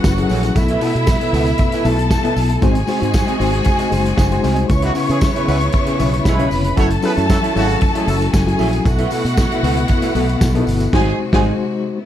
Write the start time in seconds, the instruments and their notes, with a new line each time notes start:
Already playing: string section E3 A3 F#4 F#5, reed electric piano F#3 C#4 E4 B4
0.04 fingered electric bass F#1, kick, snare, tambourine
0.17 reed electric piano F#3 C#4 E4 G#4, muted clean electric guitar stroke, closed hi-hat
0.29 fingered electric bass A#1, clean electric guitar C#4 E4 A4 C#5, open hi-hat, tambourine
0.43 muted clean electric guitar stroke, closed hi-hat, tambourine
0.55 fingered electric bass B1, reed electric piano B2 B3 E4 A4, string section B2 E4 E5, muted clean electric guitar stroke, kick, closed hi-hat, tambourine
0.68 clean electric guitar E4 A4 B4 E5, closed hi-hat
0.81 reed electric piano B2 B3 E4 A4, clean electric guitar E4 A4 B4 F#5, open hi-hat, tambourine
0.95 fingered electric bass B2, muted clean electric guitar stroke, closed hi-hat
1.07 kick, snare, tambourine
1.21 clean electric guitar E4 A4 B4 E5, closed hi-hat
1.33 fingered electric bass C#2, reed electric piano B2 B3 E4 A4, clean electric guitar E4 A4 B4 F#5, open hi-hat, tambourine
1.46 muted clean electric guitar stroke, closed hi-hat, tambourine
1.58 muted clean electric guitar stroke, kick, closed hi-hat, tambourine
1.72 clean electric guitar E4 A4 B4 E5, closed hi-hat, tambourine
1.85 fingered electric bass B1, reed electric piano B2 B3 E4 A4, clean electric guitar E4 A4 B4 E5, string section A4 A5, open hi-hat, tambourine
1.98 muted clean electric guitar stroke, closed hi-hat
2.11 muted clean electric guitar stroke, kick, snare, tambourine
2.24 reed electric piano B2 B3 E4 A4, clean electric guitar E4 A4 B4 E5, closed hi-hat
2.36 fingered electric bass B1, muted clean electric guitar stroke, open hi-hat, tambourine
2.49 muted clean electric guitar stroke, closed hi-hat
2.62 fingered electric bass G#1, string section C3 G#3 F#4 G#4 G#5, reed electric piano G#3 D#4 F#4 C5, clean electric guitar C4 F#4 G#4 D#5, kick, closed hi-hat, tambourine
2.75 muted clean electric guitar stroke, closed hi-hat
2.87 reed electric piano G#3 D#4 F#4 C5, clean electric guitar C4 F#4 G#4 D#5, open hi-hat, tambourine
3.01 fingered electric bass G#2, clean electric guitar C4 F#4 G#4 D#5, closed hi-hat
3.13 muted clean electric guitar stroke, kick, snare, tambourine
3.27 clean electric guitar C4 F#4 G#4 D#5, closed hi-hat
3.39 fingered electric bass G#1, reed electric piano G#3 D#4 F#4 C5, clean electric guitar C4 F#4 G#4 D#5, open hi-hat, tambourine
3.53 muted clean electric guitar stroke, closed hi-hat
3.64 muted clean electric guitar stroke, kick, closed hi-hat, tambourine
3.79 clean electric guitar C4 F#4 G#4 D#5, closed hi-hat, tambourine
3.91 fingered electric bass F#1, reed electric piano G#3 D#4 F#4 C5, muted clean electric guitar stroke, open hi-hat, tambourine
4.06 muted clean electric guitar stroke, closed hi-hat
4.17 fingered electric bass F#1, kick, snare, tambourine
4.31 reed electric piano G#3 D#4 F#4 C5, muted clean electric guitar stroke, closed hi-hat
4.43 fingered electric bass C2, clean electric guitar C4 F#4 G#4 D#5, open hi-hat, tambourine
4.56 muted clean electric guitar stroke, closed hi-hat
4.69 fingered electric bass C#2, string section C#3 B3 E4 C#5 C#6, reed electric piano C#3 C#4 E4 B4, muted clean electric guitar stroke, kick, closed hi-hat, tambourine
4.82 horn section F#3 D#4 F#4, clean electric guitar C#4 G#4 B4 E5, closed hi-hat
4.94 reed electric piano C#3 C#4 E4 B4, clean electric guitar C#4 G#4 B4 F#5, open hi-hat, tambourine
5.09 fingered electric bass C#3, horn section E3 C#4 G#4, muted clean electric guitar stroke, closed hi-hat, tambourine
5.21 muted clean electric guitar stroke, kick, snare, tambourine
5.35 horn section G#3 E4 B4, clean electric guitar C#4 G#4 B4 E5, closed hi-hat
5.47 fingered electric bass C#2, reed electric piano C#3 C#4 E4 B4, horn section G#3 E4 B4, clean electric guitar C#4 G#4 B4 F#5, open hi-hat, tambourine
5.61 muted clean electric guitar stroke, closed hi-hat
5.72 muted clean electric guitar stroke, kick, closed hi-hat, tambourine
5.86 clean electric guitar C#4 G#4 B4 E5, closed hi-hat
5.99 fingered electric bass B1, reed electric piano C#3 C#4 E4 B4, clean electric guitar C#4 G#4 B4 E5, open hi-hat, tambourine
6.12 muted clean electric guitar stroke, closed hi-hat
6.25 fingered electric bass B1, horn section G#3 E4 C#5, string section B4 B5, muted clean electric guitar stroke, kick, snare, tambourine
6.39 reed electric piano C#3 C#4 E4 C#5, clean electric guitar C#4 G#4 B4 E5, closed hi-hat
6.51 fingered electric bass F1, muted clean electric guitar stroke, open hi-hat, tambourine
6.64 muted clean electric guitar stroke, closed hi-hat
6.77 fingered electric bass F#1, string section E3 A3 F#4 A4 A5, reed electric piano F#3 C#4 E4 A4, horn section A3 F#4 C#5, clean electric guitar E4 A4 C#5 E5, kick, closed hi-hat, tambourine
6.90 muted clean electric guitar stroke, closed hi-hat
7.02 reed electric piano F#3 C#4 E4 A4, horn section B3 G#4 B4, clean electric guitar E4 A4 C#5 E5, open hi-hat, tambourine
7.17 fingered electric bass F#2, clean electric guitar E4 A4 C#5 E5, closed hi-hat, tambourine
7.29 horn section F#3 E4 A4, kick, snare, tambourine
7.43 clean electric guitar E4 A4 C#5 E5, closed hi-hat
7.55 fingered electric bass G#1, horn section C#3 A3 F#4, reed electric piano F#3 C#4 E4 A4, clean electric guitar E4 A4 C#5 E5, open hi-hat, tambourine
7.70 closed hi-hat
7.81 muted clean electric guitar stroke, kick, closed hi-hat, tambourine
7.95 horn section G#3 E4 G#4, clean electric guitar E4 A4 C#5 E5, closed hi-hat
8.07 fingered electric bass F#1, reed electric piano F#3 C#4 E4 A4, horn section F#3 E4 A4, muted clean electric guitar stroke, open hi-hat, tambourine
8.21 muted clean electric guitar stroke, closed hi-hat
8.33 fingered electric bass F#1, string section G#4 G#5, kick, snare, tambourine
8.46 reed electric piano F#3 C#4 E4 F#4, muted clean electric guitar stroke, closed hi-hat
8.59 fingered electric bass A#1, clean electric guitar E4 A4 C#5 E5, open hi-hat, tambourine
8.73 muted clean electric guitar stroke, closed hi-hat, tambourine
8.85 fingered electric bass B1, reed electric piano B2 B3 E4 A4, string section B2 A3 E4 F#4 F#5, muted clean electric guitar stroke, kick, closed hi-hat, tambourine
8.98 clean electric guitar E4 A4 B4 E5, closed hi-hat
9.11 reed electric piano B2 B3 E4 A4, clean electric guitar E4 A4 B4 F#5, open hi-hat, tambourine
9.25 fingered electric bass B2, muted clean electric guitar stroke, closed hi-hat, tambourine
9.37 muted clean electric guitar stroke, kick, snare, tambourine
9.52 clean electric guitar E4 A4 B4 E5, closed hi-hat
9.63 fingered electric bass C#2, reed electric piano B2 B3 E4 B4, clean electric guitar E4 A4 B4 F#5, open hi-hat, tambourine
9.77 muted clean electric guitar stroke, closed hi-hat
9.88 muted clean electric guitar stroke, kick, closed hi-hat, tambourine
10.02 clean electric guitar E4 A4 B4 E5, closed hi-hat, tambourine
10.15 fingered electric bass B1, reed electric piano B2 B3 E4 A4, clean electric guitar E4 A4 B4 E5, open hi-hat, tambourine
10.29 muted clean electric guitar stroke, closed hi-hat
10.41 fingered electric bass B1, muted clean electric guitar stroke, kick, snare, tambourine
10.55 reed electric piano B2 B3 E4 A4, clean electric guitar E4 A4 B4 E5, closed hi-hat
10.67 fingered electric bass G1, muted clean electric guitar stroke, open hi-hat, tambourine
10.80 muted clean electric guitar stroke, closed hi-hat, tambourine
10.93 fingered electric bass G#1, string section C3 G#3 F#4 G#4 G#5, reed electric piano G#3 D#4 F#4 C5, clean electric guitar D#4 F#4 C5 D#5, kick, snare, crash
11.33 fingered electric bass G#1, reed electric piano G#3 D#4 F#4 C5, clean electric guitar D#4 F#4 C5 D#5, string section G#4 G#5, kick, snare
11.98 string section C#3 B3 E4